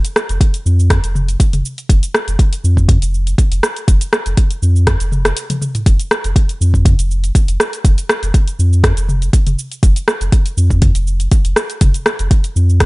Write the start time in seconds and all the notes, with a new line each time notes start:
0.05 closed hi-hat, cabasa
0.16 cross-stick, cabasa
0.29 F1, closed hi-hat, cabasa
0.41 kick, closed hi-hat, cabasa
0.54 closed hi-hat, cabasa
0.66 F2, cabasa
0.79 cabasa
0.90 kick, cross-stick, closed hi-hat, cabasa
1.04 F1, closed hi-hat, cabasa
1.15 mid tom, cabasa
1.28 closed hi-hat, cabasa
1.40 kick, closed hi-hat, cabasa
1.53 F1, closed hi-hat, mid tom, cabasa
1.65 cabasa
1.78 closed hi-hat, cabasa
1.89 F1, kick, closed hi-hat, cabasa
2.03 closed hi-hat, cabasa
2.15 cross-stick, cabasa
2.28 F1, closed hi-hat, cabasa
2.39 kick, closed hi-hat, cabasa
2.53 closed hi-hat, cabasa
2.64 F2, cabasa
2.77 kick, cabasa
2.89 kick, closed hi-hat, mid tom, cabasa
3.02 F1, closed hi-hat, cabasa
3.14 cabasa
3.27 closed hi-hat, cabasa
3.38 kick, closed hi-hat, cabasa
3.52 F1, closed hi-hat, cabasa
3.63 cross-stick, cabasa
3.76 closed hi-hat, cabasa
3.88 F1, kick, closed hi-hat, cabasa
4.01 closed hi-hat, cabasa
4.13 cross-stick, cabasa
4.26 F1, closed hi-hat, cabasa
4.37 kick, closed hi-hat, cabasa
4.51 closed hi-hat, cabasa
4.62 F2, cabasa
4.76 cabasa
4.87 kick, cross-stick, closed hi-hat, cabasa
5.00 F1, closed hi-hat, cabasa
5.12 mid tom, cabasa
5.25 cross-stick, closed hi-hat, cabasa
5.37 closed hi-hat, cabasa
5.50 closed hi-hat, mid tom, high tom, cabasa
5.62 mid tom, cabasa
5.75 closed hi-hat, mid tom, cabasa
5.86 F1, kick, closed hi-hat, cabasa
6.00 closed hi-hat, cabasa
6.11 cross-stick, cabasa
6.24 F1, closed hi-hat, cabasa
6.36 kick, closed hi-hat, cabasa
6.49 closed hi-hat, cabasa
6.61 F2, cabasa
6.74 kick, cabasa
6.85 kick, closed hi-hat, mid tom, cabasa
6.99 F1, closed hi-hat, cabasa
7.11 cabasa
7.24 closed hi-hat, cabasa
7.35 kick, closed hi-hat, cabasa
7.48 F1, closed hi-hat, cabasa
7.60 cross-stick, cabasa
7.73 closed hi-hat, cabasa
7.85 F1, kick, closed hi-hat, cabasa
7.98 closed hi-hat, cabasa
8.09 cross-stick, cabasa
8.23 F1, closed hi-hat, cabasa
8.34 kick, closed hi-hat, cabasa
8.48 closed hi-hat, cabasa
8.59 F2, cabasa
8.73 cabasa
8.84 kick, cross-stick, closed hi-hat, cabasa
8.97 F1, closed hi-hat, cabasa
9.09 mid tom, cabasa
9.22 closed hi-hat, cabasa
9.33 kick, closed hi-hat, cabasa
9.46 F1, closed hi-hat, mid tom, cabasa
9.59 cabasa
9.72 closed hi-hat, cabasa
9.83 F1, kick, closed hi-hat, cabasa
9.96 closed hi-hat, cabasa
10.08 cross-stick, cabasa
10.21 F1, closed hi-hat, cabasa
10.32 kick, closed hi-hat, cabasa
10.46 closed hi-hat, cabasa
10.57 F2, cabasa
10.70 kick, cabasa
10.82 kick, closed hi-hat, mid tom, cabasa
10.95 F1, closed hi-hat, cabasa
11.07 cabasa
11.20 closed hi-hat, cabasa
11.31 kick, closed hi-hat, cabasa
11.45 F1, closed hi-hat, cabasa
11.56 cross-stick, cabasa
11.70 closed hi-hat, cabasa
11.81 F1, kick, closed hi-hat, mid tom, cabasa
11.94 closed hi-hat, cabasa
12.06 cross-stick, cabasa
12.19 F1, closed hi-hat, cabasa
12.31 kick, closed hi-hat, cabasa
12.44 closed hi-hat, cabasa
12.56 F2, cabasa
12.70 cabasa
12.80 kick, cross-stick, closed hi-hat, cabasa